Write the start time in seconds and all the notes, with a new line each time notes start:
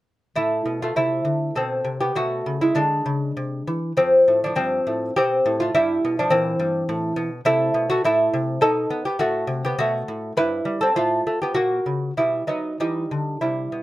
0.36 A2 A3 E4
0.66 B2
0.82 A3 F4
0.96 C3 A3 E4
1.25 D3
1.55 B2 C4 A4
1.85 C3
2.00 B3 G4
2.15 B2 A3 F#4
2.46 C#3
2.61 G#3 E4
2.75 D3 G#3 D4
3.06 C#3
3.37 C3
3.67 E3
3.97 F2 F3 C4
4.28 A2
4.44 F3 D4
4.56 G2 F3 C4
4.87 A2
5.16 B2 C4 G4
5.46 A2
5.60 A3 F4
5.75 G2 G3 E4
6.05 B2
6.19 F3 D4
6.30 A#2 E3 C4
6.60 G2
6.89 A2
7.16 B2
7.45 C3 A3 E4
7.74 B2
7.90 A3 F#4
8.04 A2 A3 E4
8.34 C3
8.61 B2 D#4 A4
8.90 B3
9.05 B3 G4
9.19 A2 A3 F#4
9.47 C3
9.65 B3 G4
9.79 B2 A3 F#4
10.08 A2
10.37 G2 E4 B4
10.65 G3
10.81 C4 A4
10.96 A2 A3 F4
11.27 A3
11.42 B3 G4
11.54 A#2 A#3 F#4
11.86 C#3
12.17 B2 G3 E4
12.47 F#3 B3 D#4
12.80 E3 G3 D#4
13.11 D3
13.41 C3 G3 E4
13.72 B2